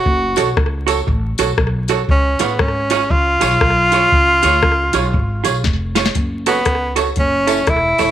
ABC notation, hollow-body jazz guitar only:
X:1
M:4/4
L:1/8
Q:"Swing" 1/4=118
K:F#m
V:1 name="Hollow-body jazz guitar"
z [FAc] z [FAc] z [FAc] z [FAc] | z [^EGc] z [EGc] z [EGc] z [EGc] | z [^EGc] z [EGc] z [EGc] z [EGc] | z [FAc] z [FAc] z [EAc] z [EAc] |]